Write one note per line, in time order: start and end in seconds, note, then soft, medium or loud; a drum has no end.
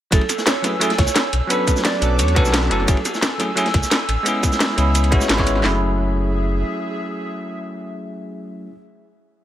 0.11 0.20 F#1 loud
0.11 0.21 F#3 medium
0.11 0.22 A3 medium
0.11 0.22 C#4 medium
0.11 0.22 E4 medium
0.11 0.23 G#4 medium
0.11 1.32 A4 medium
0.11 0.48 A4 medium
0.11 1.31 G#5 medium
0.11 1.32 E6 loud
0.11 kick loud
0.11 closed hi-hat medium
0.11 ride medium
0.11 shaker soft
0.21 ride soft
0.29 snare soft
0.29 closed hi-hat medium
0.29 ride medium
0.29 shaker medium
0.38 snare soft
0.38 shaker soft
0.46 0.64 C#5 loud
0.46 snare loud
0.46 closed hi-hat medium
0.46 ride loud
0.46 shaker soft
0.62 0.73 F#3 medium
0.62 0.73 A3 medium
0.62 0.73 C#4 medium
0.62 0.74 E4 medium
0.62 0.74 G#4 medium
0.62 0.82 B4 medium
0.62 snare medium
0.62 closed hi-hat medium
0.62 ride medium
0.62 shaker soft
0.80 0.90 F#3 loud
0.80 0.90 A3 medium
0.80 0.91 C#4 medium
0.80 0.91 E4 medium
0.80 0.91 G#4 loud
0.80 0.99 A4 loud
0.80 closed hi-hat loud
0.80 ride medium
0.80 shaker medium
0.90 snare medium
0.90 closed hi-hat soft
0.98 1.06 C#2 loud
0.98 1.31 C#5 loud
0.98 kick loud
0.98 snare medium
0.98 closed hi-hat medium
0.98 ride medium
1.06 snare soft
1.06 shaker medium
1.15 snare loud
1.15 closed hi-hat medium
1.15 ride medium
1.15 shaker soft
1.33 1.41 B1 medium
1.33 2.70 B4 medium
1.33 2.70 A5 medium
1.33 2.70 D6 medium
1.33 closed hi-hat medium
1.33 ride medium
1.47 1.98 F#3 medium
1.47 1.99 B3 medium
1.47 2.00 C#4 medium
1.47 1.84 B4 loud
1.47 closed hi-hat medium
1.47 ride medium
1.47 shaker soft
1.51 2.00 D4 medium
1.51 2.01 A4 loud
1.67 kick medium
1.67 snare soft
1.67 closed hi-hat medium
1.67 ride medium
1.67 shaker medium
1.76 snare medium
1.76 shaker soft
1.85 2.18 D5 loud
1.85 snare loud
1.85 closed hi-hat medium
1.85 ride medium
1.85 shaker soft
1.94 snare soft
2.00 2.21 B1 loud
2.00 2.34 F#3 medium
2.00 2.34 B3 medium
2.00 2.34 C#4 medium
2.00 2.35 D4 medium
2.00 2.35 A4 medium
2.00 closed hi-hat medium
2.00 ride medium
2.00 shaker soft
2.19 2.38 E2 medium
2.19 2.36 C#5 loud
2.19 closed hi-hat loud
2.19 ride medium
2.19 shaker soft
2.28 closed hi-hat soft
2.28 ride soft
2.35 2.69 B1 loud
2.35 2.68 F#3 loud
2.35 2.68 B3 loud
2.35 2.69 C#4 loud
2.35 2.69 D4 medium
2.35 2.69 A4 loud
2.35 2.72 B4 loud
2.35 kick loud
2.35 closed hi-hat medium
2.35 ride medium
2.45 snare soft
2.45 shaker medium
2.54 snare loud
2.54 closed hi-hat medium
2.54 ride medium
2.54 shaker soft
2.62 snare soft
2.62 ride soft
2.69 2.86 F#1 medium
2.69 2.85 F#3 medium
2.69 2.86 A3 medium
2.69 2.86 C#4 medium
2.69 2.86 E4 medium
2.69 4.24 A4 medium
2.69 3.19 A4 medium
2.69 2.87 A4 loud
2.69 4.24 G#5 medium
2.69 5.61 E6 medium
2.69 closed hi-hat medium
2.69 ride medium
2.80 snare soft
2.86 2.96 F#1 loud
2.86 2.97 F#3 medium
2.86 2.97 A3 medium
2.86 2.98 C#4 medium
2.86 2.98 E4 medium
2.86 2.98 G#4 medium
2.86 kick loud
2.86 closed hi-hat medium
2.86 ride medium
2.86 shaker soft
2.97 ride soft
3.05 snare soft
3.05 closed hi-hat medium
3.05 ride medium
3.05 shaker medium
3.14 snare medium
3.14 shaker soft
3.22 snare loud
3.22 closed hi-hat medium
3.22 ride medium
3.22 shaker soft
3.38 3.49 F#3 medium
3.38 3.49 A3 medium
3.38 3.49 C#4 medium
3.38 3.50 E4 medium
3.38 3.50 G#4 medium
3.38 snare soft
3.38 closed hi-hat medium
3.38 ride medium
3.38 shaker soft
3.55 3.66 F#3 loud
3.55 3.66 A3 medium
3.55 3.67 C#4 medium
3.55 3.67 E4 medium
3.55 3.67 G#4 loud
3.55 closed hi-hat medium
3.55 ride medium
3.55 shaker soft
3.66 snare medium
3.66 closed hi-hat soft
3.74 3.82 C#2 loud
3.74 kick loud
3.74 snare medium
3.74 closed hi-hat medium
3.74 ride medium
3.83 snare soft
3.83 shaker medium
3.91 snare loud
3.91 closed hi-hat medium
3.91 ride loud
3.91 shaker soft
4.09 4.17 A1 medium
4.09 closed hi-hat medium
4.09 ride medium
4.23 4.74 G#3 medium
4.23 4.75 B3 medium
4.23 4.76 C#4 medium
4.23 5.62 C#5 medium
4.23 5.62 B5 medium
4.23 closed hi-hat medium
4.23 ride medium
4.23 shaker soft
4.27 4.76 E4 medium
4.27 4.77 G#4 loud
4.43 kick medium
4.43 snare soft
4.43 closed hi-hat medium
4.43 ride medium
4.43 shaker medium
4.52 snare medium
4.52 shaker soft
4.60 snare loud
4.60 closed hi-hat medium
4.60 ride medium
4.60 shaker soft
4.70 snare soft
4.76 5.14 C#2 loud
4.76 5.09 G#3 medium
4.76 5.10 B3 medium
4.76 5.10 C#4 medium
4.76 5.10 E4 medium
4.76 5.11 G#4 medium
4.76 closed hi-hat medium
4.76 ride medium
4.76 shaker soft
4.95 closed hi-hat medium
4.95 ride medium
4.95 shaker soft
5.04 closed hi-hat soft
5.04 ride soft
5.11 5.20 G#1 medium
5.11 5.35 G#3 medium
5.11 5.36 B3 medium
5.11 5.36 C#4 medium
5.11 5.36 E4 medium
5.11 5.37 F#4 loud
5.11 kick loud
5.11 closed hi-hat medium
5.11 ride medium
5.21 snare soft
5.21 shaker medium
5.29 5.63 G#1 medium
5.29 snare loud
5.29 closed hi-hat medium
5.29 ride medium
5.29 shaker soft
5.37 5.61 G#3 medium
5.37 5.61 B3 medium
5.37 5.62 C#4 medium
5.37 5.62 E4 medium
5.37 5.63 C#5 loud
5.37 kick medium
5.37 snare soft
5.37 ride soft
5.47 closed hi-hat medium
5.47 ride medium
5.47 shaker soft
5.55 snare soft
5.60 8.66 F#3 medium
5.60 8.68 A3 medium
5.64 6.63 F#1 loud
5.64 8.70 C#4 medium
5.64 8.72 E4 medium
5.64 8.70 G#4 medium
5.64 8.70 E5 medium
5.64 snare loud
5.64 clap medium
5.68 8.74 G#4 medium